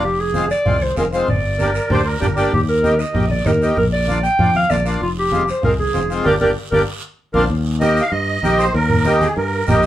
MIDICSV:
0, 0, Header, 1, 6, 480
1, 0, Start_track
1, 0, Key_signature, -3, "major"
1, 0, Tempo, 310881
1, 57, Time_signature, 4, 2, 24, 8
1, 15227, End_track
2, 0, Start_track
2, 0, Title_t, "Accordion"
2, 0, Program_c, 0, 21
2, 2453, Note_on_c, 0, 70, 85
2, 2945, Note_on_c, 0, 72, 100
2, 2951, Note_off_c, 0, 70, 0
2, 3170, Note_on_c, 0, 70, 91
2, 3190, Note_off_c, 0, 72, 0
2, 3393, Note_off_c, 0, 70, 0
2, 3416, Note_on_c, 0, 70, 78
2, 3753, Note_off_c, 0, 70, 0
2, 12045, Note_on_c, 0, 75, 105
2, 12350, Note_off_c, 0, 75, 0
2, 12369, Note_on_c, 0, 77, 96
2, 12523, Note_on_c, 0, 75, 105
2, 12524, Note_off_c, 0, 77, 0
2, 13247, Note_on_c, 0, 72, 97
2, 13274, Note_off_c, 0, 75, 0
2, 13477, Note_off_c, 0, 72, 0
2, 13495, Note_on_c, 0, 70, 100
2, 14167, Note_off_c, 0, 70, 0
2, 14219, Note_on_c, 0, 68, 84
2, 14443, Note_off_c, 0, 68, 0
2, 14461, Note_on_c, 0, 70, 82
2, 15130, Note_off_c, 0, 70, 0
2, 15227, End_track
3, 0, Start_track
3, 0, Title_t, "Clarinet"
3, 0, Program_c, 1, 71
3, 63, Note_on_c, 1, 67, 90
3, 308, Note_on_c, 1, 68, 88
3, 331, Note_off_c, 1, 67, 0
3, 778, Note_off_c, 1, 68, 0
3, 787, Note_on_c, 1, 74, 103
3, 1275, Note_on_c, 1, 72, 91
3, 1298, Note_off_c, 1, 74, 0
3, 1502, Note_off_c, 1, 72, 0
3, 1511, Note_on_c, 1, 70, 88
3, 1616, Note_off_c, 1, 70, 0
3, 1764, Note_on_c, 1, 72, 94
3, 1976, Note_off_c, 1, 72, 0
3, 1995, Note_on_c, 1, 74, 95
3, 3366, Note_off_c, 1, 74, 0
3, 3914, Note_on_c, 1, 67, 94
3, 4019, Note_off_c, 1, 67, 0
3, 4150, Note_on_c, 1, 70, 94
3, 4622, Note_on_c, 1, 75, 91
3, 4645, Note_off_c, 1, 70, 0
3, 5096, Note_off_c, 1, 75, 0
3, 5106, Note_on_c, 1, 74, 93
3, 5350, Note_on_c, 1, 70, 91
3, 5374, Note_off_c, 1, 74, 0
3, 5586, Note_off_c, 1, 70, 0
3, 5826, Note_on_c, 1, 70, 98
3, 5933, Note_off_c, 1, 70, 0
3, 6063, Note_on_c, 1, 74, 95
3, 6509, Note_off_c, 1, 74, 0
3, 6530, Note_on_c, 1, 79, 102
3, 6982, Note_off_c, 1, 79, 0
3, 7044, Note_on_c, 1, 77, 99
3, 7261, Note_on_c, 1, 74, 98
3, 7284, Note_off_c, 1, 77, 0
3, 7502, Note_off_c, 1, 74, 0
3, 7761, Note_on_c, 1, 65, 92
3, 7865, Note_off_c, 1, 65, 0
3, 8009, Note_on_c, 1, 67, 95
3, 8443, Note_off_c, 1, 67, 0
3, 8492, Note_on_c, 1, 72, 86
3, 8702, Note_off_c, 1, 72, 0
3, 8717, Note_on_c, 1, 70, 94
3, 8821, Note_off_c, 1, 70, 0
3, 8947, Note_on_c, 1, 68, 90
3, 9391, Note_off_c, 1, 68, 0
3, 9653, Note_on_c, 1, 70, 98
3, 9771, Note_off_c, 1, 70, 0
3, 9896, Note_on_c, 1, 70, 89
3, 10013, Note_off_c, 1, 70, 0
3, 10366, Note_on_c, 1, 70, 87
3, 10486, Note_off_c, 1, 70, 0
3, 11322, Note_on_c, 1, 70, 91
3, 11443, Note_off_c, 1, 70, 0
3, 15227, End_track
4, 0, Start_track
4, 0, Title_t, "Accordion"
4, 0, Program_c, 2, 21
4, 530, Note_on_c, 2, 56, 67
4, 536, Note_on_c, 2, 65, 74
4, 537, Note_on_c, 2, 60, 64
4, 702, Note_off_c, 2, 56, 0
4, 705, Note_off_c, 2, 60, 0
4, 705, Note_off_c, 2, 65, 0
4, 1006, Note_on_c, 2, 56, 65
4, 1020, Note_on_c, 2, 60, 60
4, 1021, Note_on_c, 2, 65, 68
4, 1180, Note_off_c, 2, 56, 0
4, 1187, Note_off_c, 2, 60, 0
4, 1188, Note_off_c, 2, 65, 0
4, 1497, Note_on_c, 2, 56, 71
4, 1505, Note_on_c, 2, 60, 66
4, 1510, Note_on_c, 2, 65, 83
4, 1582, Note_off_c, 2, 56, 0
4, 1586, Note_off_c, 2, 60, 0
4, 1588, Note_off_c, 2, 65, 0
4, 1744, Note_on_c, 2, 60, 58
4, 1746, Note_on_c, 2, 56, 63
4, 1756, Note_on_c, 2, 65, 70
4, 1981, Note_off_c, 2, 60, 0
4, 1982, Note_off_c, 2, 56, 0
4, 1987, Note_off_c, 2, 65, 0
4, 2465, Note_on_c, 2, 58, 65
4, 2471, Note_on_c, 2, 62, 61
4, 2480, Note_on_c, 2, 67, 73
4, 2630, Note_off_c, 2, 58, 0
4, 2633, Note_off_c, 2, 62, 0
4, 2637, Note_off_c, 2, 67, 0
4, 2925, Note_on_c, 2, 58, 78
4, 2933, Note_on_c, 2, 62, 69
4, 2941, Note_on_c, 2, 67, 82
4, 3100, Note_off_c, 2, 58, 0
4, 3104, Note_off_c, 2, 62, 0
4, 3108, Note_off_c, 2, 67, 0
4, 3400, Note_on_c, 2, 58, 85
4, 3408, Note_on_c, 2, 62, 76
4, 3415, Note_on_c, 2, 67, 94
4, 3494, Note_off_c, 2, 58, 0
4, 3498, Note_off_c, 2, 62, 0
4, 3501, Note_off_c, 2, 67, 0
4, 3649, Note_on_c, 2, 58, 78
4, 3651, Note_on_c, 2, 62, 69
4, 3661, Note_on_c, 2, 67, 83
4, 3894, Note_off_c, 2, 58, 0
4, 3896, Note_off_c, 2, 62, 0
4, 3901, Note_off_c, 2, 67, 0
4, 4371, Note_on_c, 2, 58, 68
4, 4376, Note_on_c, 2, 63, 64
4, 4388, Note_on_c, 2, 67, 77
4, 4544, Note_off_c, 2, 58, 0
4, 4546, Note_off_c, 2, 63, 0
4, 4552, Note_off_c, 2, 67, 0
4, 4844, Note_on_c, 2, 58, 67
4, 4846, Note_on_c, 2, 63, 58
4, 4856, Note_on_c, 2, 67, 69
4, 5020, Note_off_c, 2, 58, 0
4, 5022, Note_off_c, 2, 63, 0
4, 5026, Note_off_c, 2, 67, 0
4, 5333, Note_on_c, 2, 58, 72
4, 5335, Note_on_c, 2, 63, 67
4, 5345, Note_on_c, 2, 67, 81
4, 5421, Note_off_c, 2, 58, 0
4, 5422, Note_off_c, 2, 63, 0
4, 5427, Note_off_c, 2, 67, 0
4, 5581, Note_on_c, 2, 58, 66
4, 5593, Note_on_c, 2, 63, 62
4, 5598, Note_on_c, 2, 67, 70
4, 5821, Note_off_c, 2, 58, 0
4, 5827, Note_off_c, 2, 63, 0
4, 5830, Note_off_c, 2, 67, 0
4, 6295, Note_on_c, 2, 58, 67
4, 6298, Note_on_c, 2, 62, 61
4, 6309, Note_on_c, 2, 65, 78
4, 6466, Note_off_c, 2, 58, 0
4, 6468, Note_off_c, 2, 62, 0
4, 6473, Note_off_c, 2, 65, 0
4, 6786, Note_on_c, 2, 58, 68
4, 6791, Note_on_c, 2, 62, 62
4, 6791, Note_on_c, 2, 65, 68
4, 6952, Note_off_c, 2, 58, 0
4, 6954, Note_off_c, 2, 62, 0
4, 6954, Note_off_c, 2, 65, 0
4, 7255, Note_on_c, 2, 58, 75
4, 7264, Note_on_c, 2, 62, 65
4, 7272, Note_on_c, 2, 65, 79
4, 7342, Note_off_c, 2, 58, 0
4, 7347, Note_off_c, 2, 62, 0
4, 7351, Note_off_c, 2, 65, 0
4, 7488, Note_on_c, 2, 58, 68
4, 7494, Note_on_c, 2, 62, 62
4, 7501, Note_on_c, 2, 65, 72
4, 7735, Note_off_c, 2, 58, 0
4, 7738, Note_off_c, 2, 62, 0
4, 7742, Note_off_c, 2, 65, 0
4, 8205, Note_on_c, 2, 56, 70
4, 8213, Note_on_c, 2, 60, 62
4, 8219, Note_on_c, 2, 65, 76
4, 8381, Note_off_c, 2, 56, 0
4, 8386, Note_off_c, 2, 60, 0
4, 8389, Note_off_c, 2, 65, 0
4, 8690, Note_on_c, 2, 56, 63
4, 8698, Note_on_c, 2, 60, 62
4, 8700, Note_on_c, 2, 65, 68
4, 8864, Note_off_c, 2, 56, 0
4, 8868, Note_off_c, 2, 60, 0
4, 8869, Note_off_c, 2, 65, 0
4, 9162, Note_on_c, 2, 56, 71
4, 9170, Note_on_c, 2, 60, 68
4, 9179, Note_on_c, 2, 65, 79
4, 9256, Note_off_c, 2, 56, 0
4, 9260, Note_off_c, 2, 60, 0
4, 9264, Note_off_c, 2, 65, 0
4, 9414, Note_on_c, 2, 56, 62
4, 9421, Note_on_c, 2, 60, 64
4, 9432, Note_on_c, 2, 65, 69
4, 9635, Note_on_c, 2, 58, 97
4, 9639, Note_on_c, 2, 62, 90
4, 9644, Note_on_c, 2, 67, 92
4, 9658, Note_off_c, 2, 56, 0
4, 9662, Note_off_c, 2, 60, 0
4, 9667, Note_off_c, 2, 65, 0
4, 9799, Note_off_c, 2, 58, 0
4, 9802, Note_off_c, 2, 62, 0
4, 9805, Note_off_c, 2, 67, 0
4, 9894, Note_on_c, 2, 62, 90
4, 9899, Note_on_c, 2, 58, 88
4, 9903, Note_on_c, 2, 67, 83
4, 10051, Note_off_c, 2, 62, 0
4, 10054, Note_off_c, 2, 58, 0
4, 10056, Note_off_c, 2, 67, 0
4, 10384, Note_on_c, 2, 58, 90
4, 10385, Note_on_c, 2, 62, 88
4, 10386, Note_on_c, 2, 67, 90
4, 10537, Note_off_c, 2, 58, 0
4, 10537, Note_off_c, 2, 62, 0
4, 10538, Note_off_c, 2, 67, 0
4, 11343, Note_on_c, 2, 62, 90
4, 11346, Note_on_c, 2, 60, 86
4, 11346, Note_on_c, 2, 65, 95
4, 11496, Note_off_c, 2, 62, 0
4, 11498, Note_off_c, 2, 60, 0
4, 11498, Note_off_c, 2, 65, 0
4, 12051, Note_on_c, 2, 58, 77
4, 12062, Note_on_c, 2, 63, 67
4, 12067, Note_on_c, 2, 67, 81
4, 12392, Note_off_c, 2, 58, 0
4, 12398, Note_off_c, 2, 63, 0
4, 12400, Note_off_c, 2, 67, 0
4, 13020, Note_on_c, 2, 58, 73
4, 13025, Note_on_c, 2, 63, 70
4, 13037, Note_on_c, 2, 67, 86
4, 13356, Note_off_c, 2, 58, 0
4, 13359, Note_off_c, 2, 63, 0
4, 13365, Note_off_c, 2, 67, 0
4, 13978, Note_on_c, 2, 58, 72
4, 13978, Note_on_c, 2, 63, 67
4, 13991, Note_on_c, 2, 67, 84
4, 14315, Note_off_c, 2, 58, 0
4, 14315, Note_off_c, 2, 63, 0
4, 14322, Note_off_c, 2, 67, 0
4, 14940, Note_on_c, 2, 58, 82
4, 14947, Note_on_c, 2, 63, 73
4, 14951, Note_on_c, 2, 67, 86
4, 15227, Note_off_c, 2, 58, 0
4, 15227, Note_off_c, 2, 63, 0
4, 15227, Note_off_c, 2, 67, 0
4, 15227, End_track
5, 0, Start_track
5, 0, Title_t, "Fretless electric bass"
5, 0, Program_c, 3, 35
5, 46, Note_on_c, 3, 29, 89
5, 819, Note_off_c, 3, 29, 0
5, 1018, Note_on_c, 3, 36, 99
5, 1403, Note_off_c, 3, 36, 0
5, 1500, Note_on_c, 3, 29, 94
5, 1884, Note_off_c, 3, 29, 0
5, 1988, Note_on_c, 3, 31, 94
5, 2753, Note_off_c, 3, 31, 0
5, 2937, Note_on_c, 3, 38, 97
5, 3322, Note_off_c, 3, 38, 0
5, 3419, Note_on_c, 3, 31, 93
5, 3804, Note_off_c, 3, 31, 0
5, 3902, Note_on_c, 3, 39, 91
5, 4670, Note_off_c, 3, 39, 0
5, 4855, Note_on_c, 3, 34, 100
5, 5241, Note_off_c, 3, 34, 0
5, 5341, Note_on_c, 3, 39, 95
5, 5725, Note_off_c, 3, 39, 0
5, 5821, Note_on_c, 3, 34, 98
5, 6589, Note_off_c, 3, 34, 0
5, 6778, Note_on_c, 3, 41, 102
5, 7164, Note_off_c, 3, 41, 0
5, 7266, Note_on_c, 3, 34, 95
5, 7648, Note_off_c, 3, 34, 0
5, 7745, Note_on_c, 3, 29, 96
5, 8512, Note_off_c, 3, 29, 0
5, 8711, Note_on_c, 3, 36, 104
5, 9091, Note_off_c, 3, 36, 0
5, 9188, Note_on_c, 3, 29, 96
5, 9570, Note_off_c, 3, 29, 0
5, 9661, Note_on_c, 3, 31, 93
5, 9840, Note_off_c, 3, 31, 0
5, 9904, Note_on_c, 3, 31, 92
5, 10082, Note_off_c, 3, 31, 0
5, 10374, Note_on_c, 3, 31, 97
5, 10557, Note_off_c, 3, 31, 0
5, 11330, Note_on_c, 3, 34, 91
5, 11514, Note_off_c, 3, 34, 0
5, 11569, Note_on_c, 3, 39, 106
5, 12342, Note_off_c, 3, 39, 0
5, 12533, Note_on_c, 3, 43, 93
5, 12920, Note_off_c, 3, 43, 0
5, 13017, Note_on_c, 3, 34, 98
5, 13403, Note_off_c, 3, 34, 0
5, 13499, Note_on_c, 3, 39, 114
5, 14267, Note_off_c, 3, 39, 0
5, 14462, Note_on_c, 3, 43, 93
5, 14845, Note_off_c, 3, 43, 0
5, 14949, Note_on_c, 3, 34, 97
5, 15227, Note_off_c, 3, 34, 0
5, 15227, End_track
6, 0, Start_track
6, 0, Title_t, "Drums"
6, 48, Note_on_c, 9, 74, 71
6, 202, Note_off_c, 9, 74, 0
6, 525, Note_on_c, 9, 63, 82
6, 531, Note_on_c, 9, 73, 65
6, 679, Note_off_c, 9, 63, 0
6, 686, Note_off_c, 9, 73, 0
6, 774, Note_on_c, 9, 73, 65
6, 929, Note_off_c, 9, 73, 0
6, 1013, Note_on_c, 9, 74, 67
6, 1016, Note_on_c, 9, 64, 75
6, 1167, Note_off_c, 9, 74, 0
6, 1171, Note_off_c, 9, 64, 0
6, 1259, Note_on_c, 9, 63, 71
6, 1413, Note_off_c, 9, 63, 0
6, 1490, Note_on_c, 9, 73, 72
6, 1504, Note_on_c, 9, 63, 83
6, 1644, Note_off_c, 9, 73, 0
6, 1658, Note_off_c, 9, 63, 0
6, 1739, Note_on_c, 9, 73, 72
6, 1893, Note_off_c, 9, 73, 0
6, 1980, Note_on_c, 9, 64, 72
6, 1982, Note_on_c, 9, 74, 70
6, 2135, Note_off_c, 9, 64, 0
6, 2137, Note_off_c, 9, 74, 0
6, 2454, Note_on_c, 9, 63, 78
6, 2458, Note_on_c, 9, 73, 67
6, 2609, Note_off_c, 9, 63, 0
6, 2613, Note_off_c, 9, 73, 0
6, 2694, Note_on_c, 9, 73, 67
6, 2848, Note_off_c, 9, 73, 0
6, 2932, Note_on_c, 9, 74, 65
6, 2939, Note_on_c, 9, 64, 79
6, 3086, Note_off_c, 9, 74, 0
6, 3093, Note_off_c, 9, 64, 0
6, 3418, Note_on_c, 9, 73, 71
6, 3429, Note_on_c, 9, 63, 85
6, 3429, Note_on_c, 9, 64, 66
6, 3573, Note_off_c, 9, 73, 0
6, 3583, Note_off_c, 9, 63, 0
6, 3583, Note_off_c, 9, 64, 0
6, 3659, Note_on_c, 9, 73, 66
6, 3813, Note_off_c, 9, 73, 0
6, 3902, Note_on_c, 9, 74, 73
6, 3910, Note_on_c, 9, 64, 64
6, 4057, Note_off_c, 9, 74, 0
6, 4064, Note_off_c, 9, 64, 0
6, 4387, Note_on_c, 9, 63, 80
6, 4388, Note_on_c, 9, 73, 67
6, 4542, Note_off_c, 9, 63, 0
6, 4543, Note_off_c, 9, 73, 0
6, 4620, Note_on_c, 9, 73, 63
6, 4775, Note_off_c, 9, 73, 0
6, 4860, Note_on_c, 9, 64, 75
6, 4860, Note_on_c, 9, 74, 65
6, 5014, Note_off_c, 9, 64, 0
6, 5014, Note_off_c, 9, 74, 0
6, 5099, Note_on_c, 9, 63, 68
6, 5253, Note_off_c, 9, 63, 0
6, 5341, Note_on_c, 9, 63, 82
6, 5341, Note_on_c, 9, 64, 71
6, 5342, Note_on_c, 9, 73, 69
6, 5495, Note_off_c, 9, 63, 0
6, 5495, Note_off_c, 9, 64, 0
6, 5496, Note_off_c, 9, 73, 0
6, 5585, Note_on_c, 9, 73, 69
6, 5739, Note_off_c, 9, 73, 0
6, 5814, Note_on_c, 9, 74, 72
6, 5826, Note_on_c, 9, 64, 69
6, 5968, Note_off_c, 9, 74, 0
6, 5981, Note_off_c, 9, 64, 0
6, 6300, Note_on_c, 9, 73, 66
6, 6301, Note_on_c, 9, 63, 81
6, 6455, Note_off_c, 9, 73, 0
6, 6456, Note_off_c, 9, 63, 0
6, 6538, Note_on_c, 9, 73, 69
6, 6693, Note_off_c, 9, 73, 0
6, 6780, Note_on_c, 9, 64, 77
6, 6781, Note_on_c, 9, 74, 64
6, 6935, Note_off_c, 9, 64, 0
6, 6935, Note_off_c, 9, 74, 0
6, 7021, Note_on_c, 9, 63, 66
6, 7175, Note_off_c, 9, 63, 0
6, 7257, Note_on_c, 9, 73, 75
6, 7263, Note_on_c, 9, 63, 80
6, 7411, Note_off_c, 9, 73, 0
6, 7418, Note_off_c, 9, 63, 0
6, 7498, Note_on_c, 9, 73, 73
6, 7653, Note_off_c, 9, 73, 0
6, 7738, Note_on_c, 9, 74, 72
6, 7892, Note_off_c, 9, 74, 0
6, 8217, Note_on_c, 9, 63, 79
6, 8225, Note_on_c, 9, 73, 67
6, 8371, Note_off_c, 9, 63, 0
6, 8379, Note_off_c, 9, 73, 0
6, 8460, Note_on_c, 9, 73, 66
6, 8614, Note_off_c, 9, 73, 0
6, 8695, Note_on_c, 9, 64, 74
6, 8697, Note_on_c, 9, 74, 69
6, 8850, Note_off_c, 9, 64, 0
6, 8851, Note_off_c, 9, 74, 0
6, 8934, Note_on_c, 9, 63, 70
6, 9089, Note_off_c, 9, 63, 0
6, 9176, Note_on_c, 9, 63, 82
6, 9176, Note_on_c, 9, 73, 70
6, 9330, Note_off_c, 9, 73, 0
6, 9331, Note_off_c, 9, 63, 0
6, 9421, Note_on_c, 9, 73, 71
6, 9575, Note_off_c, 9, 73, 0
6, 9656, Note_on_c, 9, 74, 99
6, 9667, Note_on_c, 9, 63, 97
6, 9810, Note_off_c, 9, 74, 0
6, 9821, Note_off_c, 9, 63, 0
6, 9895, Note_on_c, 9, 63, 106
6, 9896, Note_on_c, 9, 74, 91
6, 10050, Note_off_c, 9, 63, 0
6, 10051, Note_off_c, 9, 74, 0
6, 10379, Note_on_c, 9, 74, 94
6, 10380, Note_on_c, 9, 63, 97
6, 10533, Note_off_c, 9, 74, 0
6, 10535, Note_off_c, 9, 63, 0
6, 11333, Note_on_c, 9, 74, 93
6, 11342, Note_on_c, 9, 63, 93
6, 11488, Note_off_c, 9, 74, 0
6, 11496, Note_off_c, 9, 63, 0
6, 11582, Note_on_c, 9, 74, 79
6, 11736, Note_off_c, 9, 74, 0
6, 12061, Note_on_c, 9, 73, 71
6, 12068, Note_on_c, 9, 63, 92
6, 12216, Note_off_c, 9, 73, 0
6, 12223, Note_off_c, 9, 63, 0
6, 12298, Note_on_c, 9, 73, 69
6, 12453, Note_off_c, 9, 73, 0
6, 12543, Note_on_c, 9, 74, 68
6, 12552, Note_on_c, 9, 63, 35
6, 12698, Note_off_c, 9, 74, 0
6, 12706, Note_off_c, 9, 63, 0
6, 13016, Note_on_c, 9, 63, 88
6, 13026, Note_on_c, 9, 73, 76
6, 13170, Note_off_c, 9, 63, 0
6, 13180, Note_off_c, 9, 73, 0
6, 13265, Note_on_c, 9, 73, 73
6, 13420, Note_off_c, 9, 73, 0
6, 13498, Note_on_c, 9, 63, 35
6, 13506, Note_on_c, 9, 74, 75
6, 13653, Note_off_c, 9, 63, 0
6, 13660, Note_off_c, 9, 74, 0
6, 13738, Note_on_c, 9, 64, 81
6, 13892, Note_off_c, 9, 64, 0
6, 13977, Note_on_c, 9, 63, 94
6, 13984, Note_on_c, 9, 73, 67
6, 14132, Note_off_c, 9, 63, 0
6, 14138, Note_off_c, 9, 73, 0
6, 14220, Note_on_c, 9, 73, 72
6, 14226, Note_on_c, 9, 63, 76
6, 14375, Note_off_c, 9, 73, 0
6, 14380, Note_off_c, 9, 63, 0
6, 14453, Note_on_c, 9, 74, 70
6, 14470, Note_on_c, 9, 63, 33
6, 14608, Note_off_c, 9, 74, 0
6, 14625, Note_off_c, 9, 63, 0
6, 14928, Note_on_c, 9, 73, 74
6, 14947, Note_on_c, 9, 63, 86
6, 14947, Note_on_c, 9, 64, 86
6, 15082, Note_off_c, 9, 73, 0
6, 15102, Note_off_c, 9, 63, 0
6, 15102, Note_off_c, 9, 64, 0
6, 15171, Note_on_c, 9, 73, 73
6, 15227, Note_off_c, 9, 73, 0
6, 15227, End_track
0, 0, End_of_file